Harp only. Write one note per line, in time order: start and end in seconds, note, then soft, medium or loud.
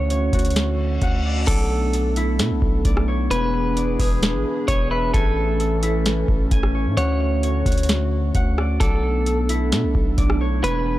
0.00 1.11 E4 medium
0.00 0.47 A4 medium
0.00 0.10 C#5 medium
0.00 1.02 F#5 medium
0.00 0.68 G#5 loud
0.11 1.54 C#5 medium
0.34 2.77 F#4 medium
1.02 2.63 F#5 loud
1.25 1.47 D5 medium
1.48 2.85 D5 loud
1.94 3.37 A4 medium
2.17 4.78 E4 loud
2.85 3.76 D5 loud
3.08 3.83 C#5 medium
3.31 4.68 G#5 loud
3.77 5.61 D5 medium
4.00 5.66 G#4 loud
4.68 5.13 G#5 loud
4.91 6.63 E5 medium
5.14 6.51 G#5 loud
5.60 7.80 A4 medium
5.83 8.44 E4 medium
6.51 8.01 G#5 loud
6.75 7.43 C#5 medium
6.98 8.35 F#5 loud
7.44 8.86 C#5 medium
7.66 10.10 F#4 medium
8.35 9.96 F#5 loud
8.58 8.80 D5 medium
8.80 10.17 D5 loud
9.27 10.70 A4 medium
9.49 10.99 E4 loud
10.18 10.99 D5 loud
10.41 10.99 C#5 medium
10.64 10.99 G#5 loud